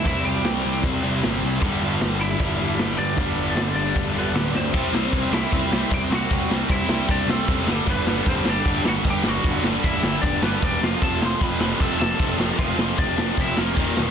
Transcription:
<<
  \new Staff \with { instrumentName = "Lead electric guitar" } { \time 4/4 \key c \lydian \tempo 4 = 153 <e' e''>8 <g' g''>4. r2 | r4. <e' e''>2 <d' d''>8~ | <d' d''>4. <d' d''>4 <b b'>4 <c' c''>8~ | <c' c''>4. <e' e''>4. <g' g''>8 <fis' fis''>8~ |
<fis' fis''>8 r8 <e' e''>4 <d' d''>8 <a a'>4. | <b b'>4 <c' c''>8 <d' d''>4 <fis' fis''>8 <g' g''>8 <fis' fis''>8~ | <fis' fis''>8 r8 <e' e''>4 <d' d''>8 <b b'>8 <d' d''>8 <f' f''>8 | <a' a''>8 <c'' c'''>8 <b' b''>8 <b' b''>8 <a' a''>8 <a' a''>4. |
<f' f''>4 <d' d''>4 <e' e''>8 <bes bes'>4. | }
  \new Staff \with { instrumentName = "Distorted electric guitar" } { \clef bass \time 4/4 \key c \lydian <c g c'>2 <c g c'>2 | <g, d g>2 <g, d g>2 | <g, d g>2 <g, d g>2 | <c g c'>8 <c g c'>8 <c g c'>8 <c g c'>8 <c g c'>8 <c g c'>8 <c g c'>8 <c g c'>8 |
<c g c'>8 <c g c'>8 <c g c'>8 <c g c'>8 <c g c'>8 <c g c'>8 <c g c'>8 <g, d g>8 | <g, d g>8 <g, d g>8 <g, d g>8 <g, d g>8 <g, d g>8 <g, d g>8 <g, d g>8 <g, d g>8 | <g, d g>8 <g, d g>8 <g, d g>8 <g, d g>8 <g, d g>8 <g, d g>8 <g, d g>8 <f, c f>8 | <f, c f>8 <f, c f>8 <f, c f>8 <f, c f>8 <f, c f>8 <f, c f>8 <f, c f>8 <f, c f>8 |
<f, c f>8 <f, c f>8 <f, c f>8 <f, c f>8 <f, c f>8 <f, c f>8 <ees, bes, ees>8 <ees, bes, ees>8 | }
  \new Staff \with { instrumentName = "Distorted electric guitar" } { \clef bass \time 4/4 \key c \lydian <c g c'>2~ <c g c'>8 <c g c'>8 <c g c'>4 | <g, d g>2~ <g, d g>8 <g, d g>8 <g, d g>4 | <g, d g>2~ <g, d g>8 <g, d g>8 <g, d g>4 | <c g c'>4. <c g c'>4. <c g c'>4 |
<c g c'>4. <c g c'>4. <c g c'>8 <g, d g>8~ | <g, d g>4 <g, d g>4. <g, d g>4 <g, d g>8~ | <g, d g>4 <g, d g>4. <g, d g>4 r8 | <f, c f>4. <f, c f>4. <f, c f>4 |
<f, c f>4. <f, c f>4. <ees, bes, ees>4 | }
  \new Staff \with { instrumentName = "Overdriven electric guitar" } { \clef bass \time 4/4 \key c \lydian <c g c'>1 | <g, d g>1 | <g, d g>1 | <c g c'>8 <c g c'>8 <c g c'>8 <c g c'>8 <c g c'>8 <c g c'>8 <c g c'>8 <c g c'>8 |
<c g c'>8 <c g c'>8 <c g c'>8 <c g c'>8 <c g c'>8 <c g c'>8 <c g c'>8 <g, d g>8 | <g, d g>8 <g, d g>8 <g, d g>8 <g, d g>8 <g, d g>8 <g, d g>8 <g, d g>8 <g, d g>8 | <g, d g>8 <g, d g>8 <g, d g>8 <g, d g>8 <g, d g>8 <g, d g>8 <g, d g>8 <f, c f>8 | <f, c f>8 <f, c f>8 <f, c f>8 <f, c f>8 <f, c f>8 <f, c f>8 <f, c f>8 <f, c f>8 |
<f, c f>8 <f, c f>8 <f, c f>8 <f, c f>8 <f, c f>8 <f, c f>8 <ees, bes, ees>8 <ees, bes, ees>8 | }
  \new Staff \with { instrumentName = "Picked electric bass" } { \clef bass \time 4/4 \key c \lydian c,8 c,8 c,8 c,8 c,8 c,8 g,,8 c,8 | g,,8 g,,8 g,,4 g,,8 g,,8 g,,8 g,,8 | g,,8 g,,8 g,,8 g,,8 g,,8 g,,8 d,,8 d,8 | c,8 c,8 c,8 c,8 c,8 c,8 c,8 c,8 |
c,8 c,8 c,8 c,8 c,8 c,8 c,8 g,,8 | g,,8 g,,8 g,,8 g,,8 g,,8 g,,8 g,,8 g,,8 | g,,8 g,,8 g,,8 g,,8 g,,8 g,,8 e,,8 f,,8 | f,,8 f,,8 f,,8 f,,8 f,,8 f,,8 f,,8 f,,8 |
f,,8 f,,8 f,,8 f,,8 f,,8 f,,8 ees,,8 e,,8 | }
  \new DrumStaff \with { instrumentName = "Drums" } \drummode { \time 4/4 <cymc bd>4 <cymc sn>4 <cymc bd>4 <cymc sn>4 | <cymc bd>4 <cymc sn>4 <cymc bd>4 <cymc sn>4 | <cymc bd>4 <cymc sn>4 <cymc bd>4 <cymc sn>8 sn8 | <cymc bd>8 sn8 <cymc bd>8 sn8 <cymc bd>8 sn8 <cymc bd>8 sn8 |
<cymc bd>8 sn8 <cymc bd>8 sn8 <cymc bd>8 sn8 <cymc bd>8 sn8 | <cymc bd>8 sn8 <cymc bd>8 sn8 <cymc bd>8 sn8 <cymc bd>8 sn8 | <cymc bd>8 sn8 <cymc bd>8 sn8 <cymc bd>8 sn8 <cymc bd>8 sn8 | <cymc bd>8 sn8 <cymc bd>8 sn8 <cymc bd>8 sn8 <cymc bd>8 sn8 |
<cymc bd>8 sn8 <cymc bd>8 sn8 <cymc bd>8 sn8 <cymc bd>8 sn8 | }
>>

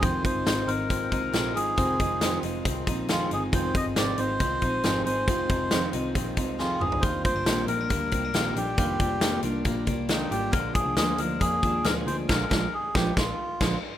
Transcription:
<<
  \new Staff \with { instrumentName = "Melodica" } { \time 4/4 \key f \dorian \tempo 4 = 137 c''8 c''4 bes'2 aes'8~ | aes'4. r4. f'8 aes'8 | c''8 ees''8 d''8 c''2 c''8~ | c''4. r4. f'8 aes'8 |
c''8 c''4 bes'2 g'8~ | g'4. r4. ees'8 g'8 | bes'8 aes'8 aes'8 bes'8 aes'4 bes'8 c''8 | bes'4 aes'8 g'8 f'4. r8 | }
  \new Staff \with { instrumentName = "Clean electric guitar" } { \time 4/4 \key f \dorian c'8 ees'8 c'8 ees'8 c'8 ees'8 aes'8 ees'8 | c'8 ees'8 c'8 ees'8 c'8 ees'8 aes'8 ees'8 | c'8 ees'8 c'8 ees'8 c'8 ees'8 aes'8 ees'8 | c'8 ees'8 c'8 ees'8 c'8 ees'8 aes'8 ees'8 |
f8 c'16 d'16 bes8 c'16 d'16 bes8 c'16 d'16 f'16 g'16 d'8 | f8 d'8 bes8 d'8 bes8 d'8 g'8 d'8 | f8 d'8 bes8 d'8 bes8 d'8 aes'8 d'8 | r1 | }
  \new Staff \with { instrumentName = "Steel-string acoustic guitar" } { \clef bass \time 4/4 \key f \dorian <f, c ees aes c' f'>8 <ees aes c' f'>8 <f, c ees aes c' f'>8 <ees aes c' f'>8 <ees aes c' f'>8 <ees aes c' f'>8 <f, c ees aes c' f'>8 <ees aes c' f'>8 | <f, c ees aes c' f'>8 <ees aes c' f'>8 <f, c ees aes c' f'>8 <ees aes c' f'>8 <ees aes c' f'>8 <ees aes c' f'>8 <f, c ees aes c' f'>8 <ees aes c' f'>8 | <f, c ees aes c' f'>8 <ees aes c' f'>8 <f, c ees aes c' f'>8 <ees aes c' f'>8 <ees aes c' f'>8 <ees aes c' f'>8 <f, c ees aes c' f'>8 <ees aes c' f'>8 | <f, c ees aes c' f'>8 <ees aes c' f'>8 <f, c ees aes c' f'>8 <ees aes c' f'>8 <ees aes c' f'>8 <ees aes c' f'>8 <f, c ees aes c' f'>8 <ees aes c' f'>8 |
<f, ees g bes d' f'>8 <g bes d' f'>8 <f, ees g bes d' f'>8 <g bes d' f'>8 <g bes d' f'>8 <g bes d' f'>8 <f, ees g bes d' f'>8 <g bes d' f'>8 | <f, ees g bes d' f'>8 <g bes d' f'>8 <f, ees g bes d' f'>8 <g bes d' f'>8 <g bes d' f'>8 <g bes d' f'>8 <f, ees g bes d' f'>8 <g bes d' f'>8 | <bes, d f aes d' f'>8 <f aes d' f'>8 <bes, d f aes d' f'>8 <f aes d' f'>8 <f aes d' f'>8 <f aes d' f'>8 <bes, d f aes d' f'>8 <f aes d' f'>8 | <bes, d f aes d' f'>8 <f aes d' f'>8 r8 <f aes d' f'>8 <f aes d' f'>8 r8 <bes, d f aes d' f'>8 r8 | }
  \new Staff \with { instrumentName = "Picked electric bass" } { \clef bass \time 4/4 \key f \dorian f,,8. g,,16 aes,,8 aes,,4 c,8 bes,,8 aes,,8 | f,,8 f,,4 f,,8 c,8 bes,,4 g,,8 | f,,8. g,,16 aes,,8 aes,,8 c,8 bes,,8 aes,,8 aes,,8 | f,,8 f,,4 c,8 bes,,8 c,4 g,,8 |
f,,8. g,,16 bes,,8 bes,,8 d,8 c,8 bes,,8 bes,,8 | f,,8 f,,4 c,8 bes,,8 c,4 aes,,8 | bes,,8. c,16 d,8 d,8 f,8 ees,8 d,8 d,8 | bes,,8 bes,,8 r8 bes,,8 bes,,8 r8 bes,,8 r8 | }
  \new DrumStaff \with { instrumentName = "Drums" } \drummode { \time 4/4 <hh bd>8 <hh bd>8 <hh sn>8 hh8 <hh bd>8 <hh bd>8 <hh sn>8 hh8 | <hh bd>8 <hh bd>8 <hh sn>8 hh8 <hh bd>8 <hh bd>8 <hh sn>8 hh8 | <hh bd>8 <hh bd>8 <hh sn>8 hh8 <hh bd>8 <hh bd>8 <hh sn>8 hh8 | <hh bd>8 <hh bd>8 <hh sn>8 hh8 <hh bd>8 <hh bd>8 sn8 toml16 tomfh16 |
<hh bd>8 <hh bd>8 <hh sn>8 hh8 <hh bd>8 <hh bd>8 <hh sn>8 hh8 | <hh bd>8 <hh bd>8 <hh sn>8 hh8 <hh bd>8 <hh bd>8 <hh sn>8 hh8 | <hh bd>8 <hh bd>8 <hh sn>8 hh8 <hh bd>8 <hh bd>8 <hh sn>8 hh8 | <cymc bd sn>8 <bd sn>8 r8 <bd sn>8 <bd sn>4 <cymc bd sn>4 | }
>>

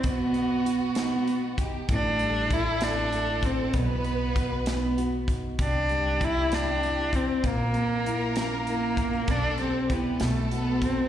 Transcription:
<<
  \new Staff \with { instrumentName = "Violin section" } { \time 6/8 \key b \phrygian \tempo 4. = 65 fis'2~ fis'8 g'8 | a'2. | b'2~ b'8 r8 | g'2. |
ais'2. | a'4 g'8 a'4. | }
  \new Staff \with { instrumentName = "Nylon-string guitar" } { \time 6/8 \key b \phrygian b,8 b8 fis'8 dis'4 dis'8 | a,8 g8 e'8 c'8 e'8 c'8 | b,8 b8 fis'8 dis'8 fis'8 dis'8 | c8 g8 e'8 c'8 e'8 c'8 |
ais,8 ais8 e'8 cis'8 e'8 b16 cis'16 | r8 g8 e'8 b,8 fis'4 | }
  \new Staff \with { instrumentName = "Cello" } { \time 6/8 \key b \phrygian b4. b4 r8 | d'4 e'8 d'4 c'8 | b4. b4 r8 | d'4 e'8 d'4 c'8 |
ais4. ais4. | d'8 c'8 b8 a8 b8 c'8 | }
  \new Staff \with { instrumentName = "Upright bass" } { \clef bass \time 6/8 \key b \phrygian b,,2. | a,,2. | b,,2. | c,2. |
ais,,2. | b,,4. b,,4 r8 | }
  \new DrumStaff \with { instrumentName = "Drums" } \drummode { \time 6/8 <hh bd>8 hh8 hh8 <hh sn>8 hh8 <hh bd>8 | <hh bd>8 hh8 <hh bd>8 <hh sn>8 hh8 <hh bd>8 | <hh bd>8 hh8 <hh bd>8 <hh sn>8 hh8 <hh bd>8 | <hh bd>8 hh8 <hh bd>8 <hh sn>8 hh8 <hh bd>8 |
<hh bd>8 hh8 hh8 <hh sn>8 hh8 <hh bd>8 | <hh bd>8 hh8 <hh bd>8 <hh sn>8 hh8 <hh bd>8 | }
>>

